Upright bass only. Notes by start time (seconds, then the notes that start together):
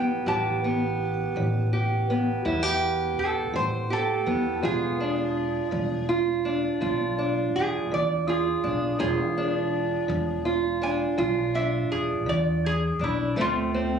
Already playing: E2
0.26 A1
1.36 A1
2.45 E2
3.18 A1
3.55 A2
4.27 E2
4.63 E1
5.72 E1
6.82 B1
7.54 E1
7.91 E2
8.64 B1
9.00 E1
10.09 E1
11.18 B1
11.91 E1
12.27 E2
12.99 B1
13.36 D2